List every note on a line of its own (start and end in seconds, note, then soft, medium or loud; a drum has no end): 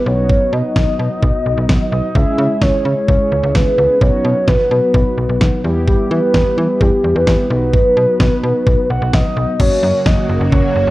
0.06 0.35 B1 loud
0.06 2.11 F#3 medium
0.06 2.11 B3 medium
0.06 2.11 D#4 medium
0.06 2.11 F#4 medium
0.06 0.54 C#5 loud
0.29 kick loud
0.53 0.62 B2 loud
0.53 1.91 D#5 loud
0.76 0.85 B1 loud
0.76 kick loud
0.76 snare loud
0.99 1.09 B2 medium
1.22 1.32 B1 loud
1.22 kick loud
1.46 1.55 B1 medium
1.57 1.67 B1 medium
1.69 1.78 B1 loud
1.69 kick medium
1.69 snare loud
1.92 2.02 B1 loud
1.92 2.17 D#5 loud
2.15 2.25 C#2 loud
2.15 3.98 G#3 medium
2.15 3.98 C#4 medium
2.15 3.98 E4 medium
2.15 3.98 G#4 medium
2.15 2.63 E5 loud
2.15 kick loud
2.39 2.48 C#3 loud
2.62 2.71 C#2 loud
2.62 3.08 C#5 loud
2.62 kick loud
2.62 snare loud
2.85 2.95 C#3 medium
3.08 3.18 C#2 medium
3.08 3.56 C#5 loud
3.08 kick loud
3.32 3.41 C#2 medium
3.43 3.53 C#2 loud
3.55 3.65 C#2 loud
3.55 4.03 B4 loud
3.55 kick medium
3.55 snare loud
3.78 3.88 C#2 loud
4.01 4.11 B1 loud
4.01 5.61 F#3 medium
4.01 5.61 B3 medium
4.01 5.61 D#4 medium
4.01 5.61 F#4 medium
4.01 4.49 C#5 loud
4.01 kick loud
4.25 4.34 B2 loud
4.48 4.57 B1 loud
4.48 4.71 B4 loud
4.48 kick loud
4.48 snare loud
4.71 4.81 B2 loud
4.71 5.60 B4 medium
4.94 5.04 B1 loud
4.94 kick loud
5.18 5.27 B1 medium
5.29 5.39 B1 medium
5.41 5.51 B1 loud
5.41 kick medium
5.41 snare loud
5.64 5.93 E2 loud
5.64 7.47 G3 medium
5.64 7.47 B3 medium
5.64 7.47 E4 medium
5.64 7.47 G4 medium
5.87 6.09 G4 loud
5.87 kick loud
6.11 6.20 E3 loud
6.11 6.82 B4 loud
6.34 6.44 E2 loud
6.34 kick loud
6.34 snare loud
6.57 6.67 E3 loud
6.80 6.90 E2 loud
6.80 7.17 G4 loud
6.80 kick loud
7.04 7.13 E2 medium
7.15 7.25 E2 medium
7.15 7.50 B4 loud
7.27 7.37 E2 loud
7.27 kick medium
7.27 snare loud
7.50 7.79 B1 loud
7.50 9.56 F#3 medium
7.50 9.56 B3 medium
7.50 9.56 D#4 medium
7.50 9.56 F#4 medium
7.50 8.86 B4 loud
7.74 kick loud
7.97 8.06 B2 medium
8.20 8.30 B1 loud
8.20 kick loud
8.20 snare loud
8.43 8.53 B2 medium
8.66 8.76 B1 medium
8.66 kick loud
8.90 8.99 B1 medium
8.90 9.15 F#5 loud
9.01 9.11 B1 loud
9.13 9.23 B1 loud
9.13 9.61 D#5 loud
9.13 kick medium
9.13 snare loud
9.36 9.46 B1 loud
9.59 9.69 F#1 loud
9.59 10.90 C#3 medium
9.59 10.90 F#3 medium
9.59 10.90 A#3 medium
9.59 10.90 C#4 medium
9.59 10.90 F#4 medium
9.59 10.08 C#5 loud
9.59 kick loud
9.59 crash medium
9.83 9.92 F#2 loud
10.06 10.16 F#1 loud
10.06 10.52 D#5 loud
10.06 kick loud
10.06 snare loud
10.29 10.39 F#1 medium
10.41 10.50 F#1 loud
10.52 10.62 F#1 loud
10.52 10.90 C#5 loud
10.52 kick loud
10.76 10.85 F#1 loud
10.87 10.90 F#1 loud